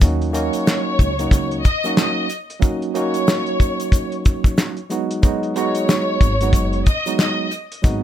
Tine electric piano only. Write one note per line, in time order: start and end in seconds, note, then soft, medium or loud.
0.02 0.31 F#3 medium
0.02 0.32 A#3 medium
0.02 0.33 C#4 medium
0.02 0.33 D#4 medium
0.02 0.33 F#4 loud
0.32 1.10 F#3 medium
0.32 1.11 A#3 medium
0.32 1.11 C#4 medium
0.32 1.11 D#4 medium
0.32 1.12 F#4 loud
1.19 1.61 F#3 medium
1.19 1.62 A#3 medium
1.19 1.62 C#4 medium
1.19 1.62 D#4 medium
1.19 1.62 F#4 loud
1.84 2.27 F#3 loud
1.84 2.27 A#3 medium
1.84 2.27 C#4 medium
1.84 2.27 D#4 medium
1.84 2.28 F#4 loud
2.59 2.91 F#3 medium
2.59 2.92 A#3 medium
2.59 2.92 C#4 medium
2.59 2.92 D#4 medium
2.59 2.93 F#4 medium
2.94 4.78 F#3 loud
2.94 4.78 A#3 medium
2.94 4.78 C#4 medium
2.94 4.79 D#4 medium
2.94 4.79 F#4 loud
4.89 5.20 F#3 medium
4.89 5.21 G#3 medium
4.89 5.21 B3 medium
4.89 5.22 D#4 medium
4.89 5.22 F#4 loud
5.22 5.53 F#3 loud
5.22 5.54 G#3 medium
5.22 5.54 B3 medium
5.22 5.54 D#4 medium
5.22 5.54 F#4 loud
5.55 6.33 F#3 medium
5.55 6.33 G#3 medium
5.55 6.33 B3 medium
5.55 6.33 D#4 medium
5.55 6.34 F#4 loud
6.41 6.83 F#3 medium
6.41 6.84 G#3 medium
6.41 6.84 B3 medium
6.41 6.84 D#4 medium
6.41 6.84 F#4 loud
7.06 7.48 F#3 loud
7.06 7.49 G#3 medium
7.06 7.49 B3 medium
7.06 7.49 D#4 medium
7.06 7.50 F#4 loud
7.82 8.03 F#3 medium
7.82 8.03 G#3 medium
7.82 8.03 B3 medium
7.82 8.03 D#4 medium
7.82 8.03 F#4 loud